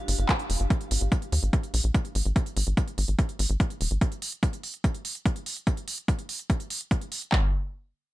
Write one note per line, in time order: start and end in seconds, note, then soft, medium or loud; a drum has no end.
0.00 0.70 D4 medium
0.00 0.70 G4 medium
0.00 0.70 F5 medium
0.08 0.15 G1 medium
0.08 open hi-hat loud
0.19 0.25 G1 medium
0.19 closed hi-hat soft
0.29 kick loud
0.29 clap loud
0.29 closed hi-hat medium
0.39 closed hi-hat soft
0.50 0.56 F1 medium
0.50 open hi-hat loud
0.60 0.67 G1 medium
0.60 closed hi-hat soft
0.70 kick loud
0.70 closed hi-hat medium
0.81 closed hi-hat soft
0.91 0.98 G#1 medium
0.91 open hi-hat loud
1.01 1.08 G#1 medium
1.01 closed hi-hat soft
1.12 kick loud
1.12 closed hi-hat medium
1.22 closed hi-hat soft
1.32 1.39 D#2 loud
1.32 open hi-hat medium
1.43 1.50 G#1 medium
1.43 closed hi-hat soft
1.53 kick loud
1.53 closed hi-hat medium
1.63 closed hi-hat soft
1.74 1.81 A#1 medium
1.74 open hi-hat loud
1.84 1.91 A#1 medium
1.84 closed hi-hat soft
1.95 kick loud
1.95 closed hi-hat medium
2.05 closed hi-hat soft
2.15 2.22 G#1 medium
2.15 open hi-hat medium
2.26 2.32 G#1 medium
2.26 closed hi-hat soft
2.36 kick loud
2.36 closed hi-hat medium
2.46 closed hi-hat soft
2.57 2.63 G#1 loud
2.57 open hi-hat loud
2.67 2.74 G#1 medium
2.67 closed hi-hat soft
2.77 kick loud
2.77 closed hi-hat medium
2.88 closed hi-hat soft
2.98 3.05 G#1 loud
2.98 open hi-hat medium
3.08 3.15 G#1 medium
3.08 closed hi-hat soft
3.19 kick loud
3.19 closed hi-hat medium
3.29 closed hi-hat soft
3.39 3.46 G#1 loud
3.39 open hi-hat loud
3.50 3.56 G#1 medium
3.50 closed hi-hat soft
3.60 kick loud
3.60 closed hi-hat medium
3.70 closed hi-hat soft
3.81 3.88 D#1 medium
3.81 open hi-hat medium
3.91 3.98 G#1 medium
3.91 closed hi-hat soft
4.01 kick loud
4.01 closed hi-hat medium
4.12 closed hi-hat soft
4.22 open hi-hat loud
4.32 closed hi-hat soft
4.43 kick loud
4.43 closed hi-hat medium
4.53 closed hi-hat soft
4.63 open hi-hat medium
4.74 closed hi-hat soft
4.84 kick loud
4.84 closed hi-hat medium
4.95 closed hi-hat soft
5.05 open hi-hat loud
5.15 closed hi-hat soft
5.26 kick loud
5.26 closed hi-hat medium
5.36 closed hi-hat soft
5.46 open hi-hat medium
5.57 closed hi-hat soft
5.67 kick loud
5.67 closed hi-hat medium
5.77 closed hi-hat soft
5.88 open hi-hat loud
5.98 closed hi-hat soft
6.08 kick loud
6.08 closed hi-hat medium
6.19 closed hi-hat soft
6.29 open hi-hat medium
6.39 closed hi-hat soft
6.50 kick loud
6.50 closed hi-hat medium
6.60 closed hi-hat soft
6.70 open hi-hat loud
6.81 closed hi-hat soft
6.91 kick loud
6.91 closed hi-hat medium
7.01 closed hi-hat soft
7.12 open hi-hat medium
7.22 closed hi-hat soft
7.32 kick loud
7.32 clap medium